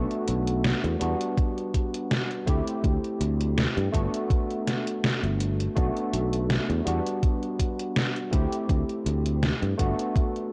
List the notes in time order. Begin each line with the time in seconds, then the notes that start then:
Already playing: A3 B3 D4 F#4
0.11 closed hi-hat
0.28 B1, closed hi-hat
0.47 closed hi-hat
0.64 snare, closed hi-hat
0.84 E2, closed hi-hat
0.99 E2 G3 B3 D4 F#4, closed hi-hat
1.21 closed hi-hat
1.38 kick, closed hi-hat
1.58 closed hi-hat
1.74 kick, closed hi-hat
1.94 closed hi-hat
2.11 snare, closed hi-hat
2.31 closed hi-hat
2.46 D2 A3 C4 E4 G4, kick, closed hi-hat
2.67 closed hi-hat
2.84 D2, kick, closed hi-hat
3.04 closed hi-hat
3.21 D2, closed hi-hat
3.41 closed hi-hat
3.58 snare, closed hi-hat
3.77 G2, closed hi-hat
3.92 G1 A3 B3 D4 F#4, kick, closed hi-hat
4.14 closed hi-hat
4.30 kick, closed hi-hat
4.51 closed hi-hat
4.67 snare, closed hi-hat
4.87 closed hi-hat
5.04 snare, closed hi-hat
5.23 G1, closed hi-hat
5.40 closed hi-hat
5.60 closed hi-hat
5.75 B1 A3 B3 D4 F#4, kick, closed hi-hat
5.97 closed hi-hat
6.13 B1, closed hi-hat
6.33 closed hi-hat
6.50 snare, closed hi-hat
6.70 E2, closed hi-hat
6.85 E2 G3 B3 D4 F#4, closed hi-hat
7.07 closed hi-hat
7.23 kick, closed hi-hat
7.43 closed hi-hat
7.59 kick, closed hi-hat
7.79 closed hi-hat
7.96 snare, closed hi-hat
8.16 closed hi-hat
8.31 D2 A3 C4 E4 G4, kick, closed hi-hat
8.52 closed hi-hat
8.69 D2, kick, closed hi-hat
8.89 closed hi-hat
9.06 D2, closed hi-hat
9.26 closed hi-hat
9.43 snare, closed hi-hat
9.62 G2, closed hi-hat
9.77 G1 A3 B3 D4 F#4, kick, closed hi-hat
9.99 closed hi-hat
10.16 kick, closed hi-hat
10.36 closed hi-hat